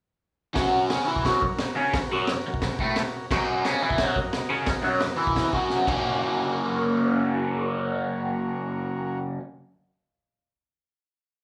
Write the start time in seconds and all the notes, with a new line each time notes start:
0.53 F#2 F#3 F#4 A#4 C#5, kick, snare, open hi-hat
0.89 C#3 C#4, snare, open hi-hat
1.06 E3 E4
1.16 kick
1.23 F#2 F#3, kick, snare, open hi-hat
1.42 F#2, kick
1.59 snare, open hi-hat
1.76 C#3 C#4
1.94 muted overdriven electric guitar stroke, kick, snare, open hi-hat
2.12 F#2 F#3
2.27 F#2, snare, open hi-hat
2.47 F#2
2.54 kick
2.62 F#2, kick, snare, open hi-hat
2.79 A2 A3, kick
2.96 muted overdriven electric guitar stroke, snare, open hi-hat
3.31 F#2 F#3 F#4 A#4 D#5, kick, snare, crash
3.65 C#3 C#4, snare, open hi-hat
3.82 E3 E4
3.90 kick
3.98 F#2 F#3, kick, snare, open hi-hat
4.16 F#2, kick
4.33 snare, open hi-hat
4.50 C#3 C#4
4.66 muted overdriven electric guitar stroke, kick, snare, open hi-hat
4.83 F#2 F#3
5.01 F#2, snare, open hi-hat
5.17 E3 E4
5.27 kick
5.36 kick, snare, open hi-hat
5.52 F#2 F#3, kick
5.70 snare
5.86 F#2 C#3 F#3 A#3 F#4 A#4 C#5, kick, crash
5.90 C#4